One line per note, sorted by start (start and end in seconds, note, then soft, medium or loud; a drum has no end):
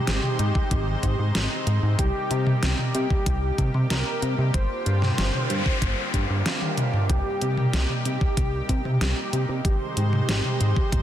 0.00 4.50 C3 medium
0.00 1.96 D#3 medium
0.00 1.96 G#3 medium
0.00 4.50 D#4 medium
0.00 1.86 G4 loud
0.00 1.96 C5 medium
0.07 0.20 G#1 medium
0.07 snare loud
0.07 closed hi-hat medium
0.23 mid tom medium
0.39 0.52 G#2 medium
0.39 closed hi-hat medium
0.55 kick medium
0.71 0.96 G#1 medium
0.71 kick loud
0.71 closed hi-hat medium
1.03 1.16 G#2 medium
1.03 kick medium
1.03 closed hi-hat medium
1.19 1.32 G#2 medium
1.35 1.47 G#1 medium
1.35 snare loud
1.35 closed hi-hat medium
1.67 1.79 G#2 medium
1.67 closed hi-hat medium
1.83 1.95 G#2 medium
1.99 2.11 C2 loud
1.99 9.61 G3 medium
1.99 9.61 A#3 medium
1.99 2.82 G4 loud
1.99 7.06 G4 medium
1.99 kick loud
1.99 closed hi-hat medium
2.31 2.56 C3 medium
2.31 closed hi-hat medium
2.47 mid tom medium
2.63 2.75 C2 medium
2.63 snare loud
2.63 closed hi-hat medium
2.79 mid tom medium
2.94 3.07 C3 medium
2.94 3.78 G4 loud
2.94 closed hi-hat medium
3.10 kick loud
3.26 3.51 C2 medium
3.26 kick loud
3.26 closed hi-hat medium
3.58 3.71 C3 medium
3.58 kick medium
3.58 closed hi-hat medium
3.74 3.87 C3 loud
3.74 mid tom medium
3.90 4.03 C2 medium
3.90 4.46 A#4 medium
3.90 snare loud
3.90 closed hi-hat medium
4.22 4.35 C3 medium
4.22 closed hi-hat medium
4.38 4.51 C3 loud
4.54 4.67 G1 loud
4.54 7.07 D3 medium
4.54 7.07 F4 medium
4.54 6.97 C5 loud
4.54 kick loud
4.54 closed hi-hat medium
4.54 noise sweep medium
4.86 5.11 G2 medium
4.86 closed hi-hat medium
5.02 snare soft
5.02 mid tom medium
5.18 5.31 G1 medium
5.18 snare loud
5.18 closed hi-hat medium
5.34 mid tom medium
5.50 5.62 G2 medium
5.50 closed hi-hat medium
5.66 kick medium
5.82 5.94 G1 medium
5.82 kick loud
5.82 closed hi-hat medium
6.14 6.26 G2 medium
6.14 kick medium
6.14 closed hi-hat medium
6.30 6.42 G2 medium
6.46 snare loud
6.46 closed hi-hat medium
6.62 high tom medium
6.77 closed hi-hat medium
6.77 mid tom medium
6.93 mid tom medium
7.09 7.22 C2 loud
7.09 11.02 C3 medium
7.09 11.02 D#4 medium
7.09 9.62 G4 medium
7.09 7.93 G4 loud
7.09 kick loud
7.09 closed hi-hat medium
7.41 7.66 C3 medium
7.41 closed hi-hat medium
7.57 mid tom medium
7.73 7.86 C2 medium
7.73 snare loud
7.73 closed hi-hat medium
7.89 mid tom medium
8.05 8.18 C3 medium
8.05 8.88 G4 loud
8.05 closed hi-hat medium
8.21 kick loud
8.37 8.62 C2 medium
8.37 kick loud
8.37 closed hi-hat medium
8.69 8.82 C3 loud
8.69 kick medium
8.69 closed hi-hat medium
8.85 8.98 C3 loud
8.85 mid tom medium
9.01 9.13 C2 loud
9.01 9.56 G4 medium
9.01 snare loud
9.01 closed hi-hat medium
9.33 9.45 C3 medium
9.33 closed hi-hat medium
9.49 9.61 C3 loud
9.65 9.77 G#1 loud
9.65 11.02 D#3 medium
9.65 11.02 G#3 medium
9.65 11.02 G4 loud
9.65 11.02 C5 medium
9.65 kick loud
9.65 closed hi-hat medium
9.97 10.22 G#2 loud
9.97 closed hi-hat medium
10.13 mid tom medium
10.29 10.41 G#1 medium
10.29 snare loud
10.29 closed hi-hat medium
10.45 mid tom medium
10.61 10.73 G#2 medium
10.61 closed hi-hat medium
10.76 kick loud
10.92 11.02 G#1 medium
10.92 kick loud
10.92 closed hi-hat medium